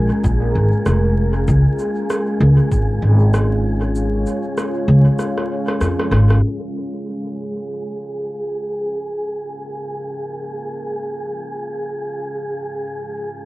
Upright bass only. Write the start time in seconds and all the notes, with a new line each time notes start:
0.24 A#1
0.55 G#1
0.86 F1
1.48 C#2
2.40 C#2
2.72 G#1
3.02 G#1
4.88 C#2
5.81 F2
6.11 G#1